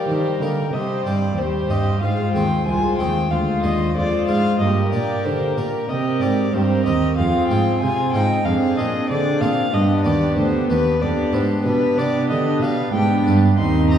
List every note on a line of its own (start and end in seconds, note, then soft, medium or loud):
0.00 0.71 G3 soft
0.00 0.23 A#3 soft
0.00 0.23 D#4 soft
0.00 0.24 G4 soft
0.00 0.71 G4 soft
0.00 0.70 A#4 soft
0.08 0.38 D#3 medium
0.08 0.38 D#3 soft
0.08 0.43 C5 medium
0.40 0.71 D3 medium
0.40 0.71 D3 soft
0.40 0.65 A#3 soft
0.40 0.65 D#4 soft
0.40 0.65 G4 soft
0.40 0.74 A#4 medium
0.72 1.03 C3 medium
0.72 1.03 C3 soft
0.72 1.36 G3 soft
0.72 1.36 G4 soft
0.72 1.37 C5 soft
0.72 1.05 D#5 medium
1.05 1.36 G2 soft
1.05 1.35 G2 soft
1.05 1.53 C4 soft
1.05 1.53 G4 soft
1.05 1.53 C5 soft
1.05 1.39 D5 medium
1.37 1.68 D#2 soft
1.37 1.67 D#2 soft
1.37 2.01 G3 soft
1.37 2.01 G4 soft
1.37 2.01 C5 soft
1.37 1.71 C5 medium
1.70 2.00 G2 soft
1.70 1.99 G2 soft
1.70 1.93 C4 soft
1.70 1.93 G4 soft
1.70 1.94 C5 soft
1.70 2.02 D#5 medium
2.02 2.32 G#2 medium
2.02 2.32 G#2 soft
2.02 2.65 G#3 soft
2.02 2.66 F4 soft
2.02 2.66 C5 soft
2.02 2.33 F5 soft
2.34 2.65 D#2 soft
2.34 2.64 D#2 soft
2.34 2.82 C4 soft
2.34 2.82 G#4 soft
2.34 2.82 C5 soft
2.34 2.66 G5 medium
2.67 2.97 C2 medium
2.67 2.97 C2 soft
2.67 3.30 G#3 soft
2.67 3.30 F4 soft
2.67 3.30 C5 soft
2.67 2.98 G#5 medium
2.98 3.29 D#2 soft
2.98 3.23 C4 soft
2.98 3.23 G#4 soft
2.98 3.23 C5 soft
2.98 3.32 G5 medium
3.31 3.60 D2 soft
3.31 3.62 D2 medium
3.31 3.94 G#3 soft
3.31 3.94 F4 soft
3.31 3.94 C5 soft
3.31 3.62 F5 medium
3.63 3.92 D#2 soft
3.63 3.94 D#2 soft
3.63 4.10 D4 soft
3.63 4.10 G#4 soft
3.63 4.10 C5 soft
3.63 3.95 D#5 medium
3.96 4.26 F2 medium
3.96 4.25 F2 soft
3.96 4.59 G#3 medium
3.96 4.60 F4 soft
3.96 4.59 C5 soft
3.96 4.28 D5 medium
4.28 4.57 G#2 soft
4.28 4.58 G#2 soft
4.28 4.51 D4 soft
4.28 4.51 G#4 soft
4.28 4.52 C5 soft
4.28 4.59 F5 medium
4.60 4.89 G2 soft
4.60 4.91 G2 medium
4.60 5.87 A#3 soft
4.60 5.90 G4 soft
4.60 5.89 A#4 soft
4.60 4.92 D#5 medium
4.92 5.21 A#2 soft
4.92 5.23 A#2 soft
4.92 5.39 D4 soft
4.92 5.39 G4 soft
4.92 5.39 A#4 soft
4.92 5.26 D5 medium
5.24 5.53 D3 soft
5.24 5.55 D3 medium
5.24 5.59 C5 medium
5.58 5.86 A#2 soft
5.58 5.87 A#2 medium
5.58 5.81 D4 soft
5.58 5.81 G4 soft
5.58 5.91 A#4 medium
5.58 5.81 A#4 soft
5.89 6.18 C3 soft
5.89 6.20 C3 medium
5.89 6.52 C4 soft
5.89 6.53 G4 soft
5.89 6.52 A#4 medium
5.89 6.23 D#5 medium
6.21 6.50 G#2 soft
6.21 6.52 G#2 soft
6.21 6.68 C4 soft
6.21 6.68 G4 soft
6.21 6.68 A#4 soft
6.21 6.55 D5 medium
6.53 6.83 G2 soft
6.53 6.84 G2 medium
6.53 7.16 C4 soft
6.53 7.17 G4 soft
6.53 7.17 A#4 soft
6.53 6.85 C5 medium
6.85 7.16 D#2 medium
6.85 7.15 D#2 soft
6.85 7.09 C4 soft
6.85 7.09 G4 soft
6.85 7.10 A#4 soft
6.85 7.17 D#5 medium
7.17 7.48 F2 medium
7.17 7.47 F2 soft
7.17 7.80 C4 soft
7.17 7.81 F4 soft
7.17 7.81 G#4 soft
7.17 7.48 F5 medium
7.48 7.79 G#2 soft
7.48 7.80 G#2 medium
7.48 7.96 C4 soft
7.48 7.97 F4 soft
7.48 7.97 G#4 soft
7.48 7.80 G5 medium
7.81 8.11 C3 soft
7.81 8.12 C3 medium
7.81 8.44 C4 medium
7.81 8.14 F4 medium
7.81 8.45 G#4 soft
7.81 8.13 G#5 medium
8.13 8.43 G#2 soft
8.13 8.44 G#2 medium
8.13 8.37 C4 soft
8.13 8.47 D#4 soft
8.13 8.38 F4 soft
8.13 8.38 G#4 soft
8.13 8.47 G5 medium
8.45 8.76 F2 medium
8.45 8.75 F2 soft
8.45 9.07 C4 medium
8.45 9.10 D4 soft
8.45 9.08 G#4 medium
8.45 8.79 F5 medium
8.78 9.08 A#2 medium
8.78 9.07 A#2 soft
8.78 9.24 C4 soft
8.78 9.24 D4 soft
8.78 9.25 G#4 soft
8.78 9.09 D#5 medium
9.08 9.40 D3 medium
9.08 9.39 D3 soft
9.08 9.72 C4 medium
9.08 9.73 D4 soft
9.08 9.72 G#4 medium
9.08 9.43 D5 medium
9.41 9.71 A#2 soft
9.41 9.72 A#2 medium
9.41 9.65 C4 soft
9.41 9.65 D4 soft
9.41 9.65 G#4 soft
9.41 9.75 F5 medium
9.73 10.02 G2 soft
9.73 10.04 G2 medium
9.73 10.99 B3 medium
9.73 11.00 D4 medium
9.73 11.00 G4 medium
9.73 10.04 D#5 medium
10.04 10.34 D#2 soft
10.04 10.36 D#2 medium
10.04 10.51 B3 soft
10.04 10.51 D4 soft
10.04 10.52 G4 soft
10.04 10.37 D5 medium
10.37 10.66 D2 soft
10.37 10.67 D2 medium
10.37 10.69 C5 medium
10.70 10.99 D#2 soft
10.70 11.00 D#2 medium
10.70 10.93 B3 soft
10.70 10.93 D4 soft
10.70 10.94 G4 soft
10.70 11.03 B4 medium
11.01 11.30 F2 soft
11.01 11.31 F2 medium
11.01 11.64 B3 medium
11.01 11.65 D4 medium
11.01 11.64 G4 medium
11.01 11.36 D5 medium
11.33 11.62 G#2 soft
11.33 11.63 G#2 medium
11.33 11.79 B3 soft
11.33 11.80 D4 soft
11.33 11.80 G4 soft
11.33 11.65 C5 medium
11.65 11.95 B2 soft
11.65 11.96 B2 medium
11.65 12.91 B3 medium
11.65 12.92 D4 medium
11.65 12.91 G4 medium
11.65 11.99 B4 medium
11.98 12.28 C3 medium
11.98 12.27 C3 soft
11.98 12.21 B3 soft
11.98 12.21 D4 soft
11.98 12.22 G4 soft
11.98 12.29 D5 medium
12.30 12.60 D3 medium
12.30 12.59 D3 soft
12.30 12.64 D#5 medium
12.62 12.92 B2 medium
12.62 12.91 B2 soft
12.62 12.86 B3 soft
12.62 13.09 D4 soft
12.62 13.09 G4 soft
12.62 12.93 F5 medium
12.94 13.24 G#2 medium
12.94 13.23 G#2 soft
12.94 13.57 B3 medium
12.94 13.57 D4 medium
12.94 13.56 G4 soft
12.94 13.25 G5 medium
13.27 13.56 G2 medium
13.27 13.56 G2 soft
13.27 13.50 B3 soft
13.27 13.50 D4 soft
13.27 13.51 G4 soft
13.58 13.98 D#2 medium
13.58 13.98 D#2 soft
13.58 13.98 C4 medium
13.58 13.98 D#4 medium
13.58 13.98 G4 medium
13.58 13.88 C6 medium
13.91 13.98 C4 soft
13.91 13.98 D#4 soft
13.91 13.98 G4 soft
13.91 13.98 A#5 medium